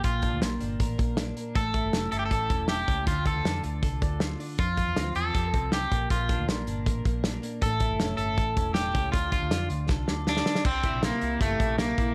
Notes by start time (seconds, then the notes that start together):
0.04 A#1 A#2 F4, kick, closed hi-hat
0.22 D4, kick, closed hi-hat
0.33 D2
0.42 A#1 A#3, snare, closed hi-hat
0.60 G1 D4, closed hi-hat
0.80 A1 A#4, kick, closed hi-hat
0.98 A#1 A#3, kick, closed hi-hat
1.17 D4, snare, closed hi-hat
1.36 A#3, closed hi-hat
1.55 A1 A3 A4, kick, closed hi-hat
1.74 E4, kick, closed hi-hat
1.84 G1
1.93 F1 C#4, snare, closed hi-hat
2.12 G1 E4 A4, closed hi-hat
2.19 G4
2.25 A4
2.31 A1 A4, kick, closed hi-hat
2.50 E1 C#4, kick, closed hi-hat
2.68 E4 G4, snare, closed hi-hat
2.88 C#2 C#4, kick, closed hi-hat
3.07 D2 D3 F4, kick, closed hi-hat
3.25 F4 A4, kick, closed hi-hat
3.36 D2
3.45 F2 D4, snare, closed hi-hat
3.64 D2 F4, closed hi-hat
3.83 C2 A4, kick, closed hi-hat
4.02 D2 D4, kick, closed hi-hat
4.20 F4, snare, closed hi-hat
4.40 D4, open hi-hat
4.58 F2 F3 F4, kick, closed hi-hat
4.77 F4, kick, closed hi-hat
4.87 E2
4.96 D2 C4, snare, closed hi-hat
5.15 E2 F4 A4, closed hi-hat
5.35 F2 G4, kick, closed hi-hat
5.44 A4
5.54 C2 C4, kick, closed hi-hat
5.72 F4 G4, snare, closed hi-hat
5.91 A#1 A#2, kick, closed hi-hat
6.10 A#1 A#2 F4, kick, closed hi-hat
6.29 D4, kick, closed hi-hat
6.39 D2
6.48 A#1 A#3, snare, closed hi-hat
6.67 G1 D4, closed hi-hat
6.86 A1 A#4, kick, closed hi-hat
7.05 A#1 A#3, kick, closed hi-hat
7.24 D4, snare, closed hi-hat
7.43 A#3, closed hi-hat
7.62 A1 A2 A4, kick, closed hi-hat
7.80 E4, kick, closed hi-hat
7.91 G1
8.00 F1 C#4, snare, closed hi-hat
8.17 G1 E4 A4, closed hi-hat
8.38 A1 A4, kick, closed hi-hat
8.57 E1 C#4, kick, closed hi-hat
8.74 D4 G4, snare, closed hi-hat
8.85 E4
8.94 C#2 C#4, kick, closed hi-hat
9.12 D2 D3 F4, kick, closed hi-hat
9.32 F4, kick, closed hi-hat
9.42 D2
9.51 F2 D4, snare, closed hi-hat
9.70 D2 F4, closed hi-hat
9.89 C2 A4, kick, snare
10.08 D2 D4, snare
10.27 D4 F4, snare
10.37 snare
10.46 D4, snare
10.55 snare
10.65 C2 C3 C4, kick, crash
10.83 E4, kick, closed hi-hat
10.93 A#1
11.02 A#3 G4, snare, closed hi-hat
11.21 C2 E4, closed hi-hat
11.41 G1 A3 G4, kick, closed hi-hat
11.59 A#1 E4, kick, closed hi-hat
11.78 A#3, snare, closed hi-hat
11.97 A#1 E4, kick, closed hi-hat